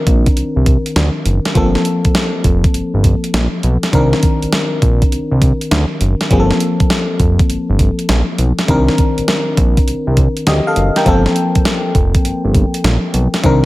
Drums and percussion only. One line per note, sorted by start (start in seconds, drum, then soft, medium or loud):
0.07 kick medium
0.07 closed hi-hat medium
0.26 kick loud
0.26 closed hi-hat medium
0.37 closed hi-hat medium
0.66 kick loud
0.66 closed hi-hat medium
0.86 closed hi-hat medium
0.96 snare loud
0.96 closed hi-hat medium
1.26 closed hi-hat medium
1.45 snare medium
1.45 closed hi-hat medium
1.55 kick loud
1.55 closed hi-hat medium
1.75 snare medium
1.85 closed hi-hat medium
2.05 kick medium
2.05 closed hi-hat soft
2.15 snare loud
2.15 closed hi-hat medium
2.44 kick medium
2.44 closed hi-hat medium
2.64 kick medium
2.64 closed hi-hat medium
2.74 closed hi-hat medium
3.04 kick loud
3.04 closed hi-hat medium
3.24 closed hi-hat medium
3.34 snare loud
3.34 closed hi-hat medium
3.63 closed hi-hat medium
3.83 snare medium
3.83 closed hi-hat medium
3.93 kick loud
3.93 closed hi-hat medium
4.13 snare medium
4.23 kick loud
4.23 closed hi-hat medium
4.42 closed hi-hat medium
4.53 snare loud
4.53 closed hi-hat medium
4.82 kick medium
4.82 closed hi-hat medium
5.02 kick medium
5.02 closed hi-hat medium
5.12 closed hi-hat medium
5.42 kick medium
5.42 closed hi-hat medium
5.61 closed hi-hat medium
5.71 snare loud
5.71 closed hi-hat medium
6.01 closed hi-hat medium
6.21 snare medium
6.21 closed hi-hat medium
6.31 kick loud
6.31 closed hi-hat medium
6.51 snare medium
6.60 closed hi-hat medium
6.80 kick medium
6.80 closed hi-hat medium
6.90 snare loud
6.90 closed hi-hat medium
7.20 kick loud
7.20 closed hi-hat medium
7.39 kick loud
7.39 closed hi-hat medium
7.50 closed hi-hat medium
7.79 kick medium
7.79 closed hi-hat medium
7.99 closed hi-hat medium
8.09 snare loud
8.09 closed hi-hat medium
8.38 closed hi-hat medium
8.59 snare medium
8.59 closed hi-hat medium
8.68 kick medium
8.68 closed hi-hat medium
8.88 snare medium
8.98 kick medium
8.98 closed hi-hat medium
9.18 closed hi-hat medium
9.28 snare loud
9.28 closed hi-hat medium
9.57 kick medium
9.57 closed hi-hat medium
9.77 kick loud
9.77 closed hi-hat medium
9.88 closed hi-hat medium
10.17 kick medium
10.17 closed hi-hat medium
10.37 closed hi-hat medium
10.47 snare loud
10.47 closed hi-hat medium
10.76 closed hi-hat medium
10.96 snare medium
10.96 closed hi-hat medium
11.06 kick loud
11.06 closed hi-hat medium
11.26 snare medium
11.36 closed hi-hat medium
11.55 kick medium
11.55 closed hi-hat medium
11.65 snare loud
11.65 closed hi-hat medium
11.95 kick loud
11.95 closed hi-hat medium
12.15 kick medium
12.15 closed hi-hat medium
12.25 closed hi-hat medium
12.54 kick medium
12.54 closed hi-hat medium
12.74 closed hi-hat medium
12.84 snare loud
12.84 closed hi-hat medium
13.14 closed hi-hat medium
13.34 snare medium
13.34 closed hi-hat medium
13.44 kick loud
13.44 closed hi-hat medium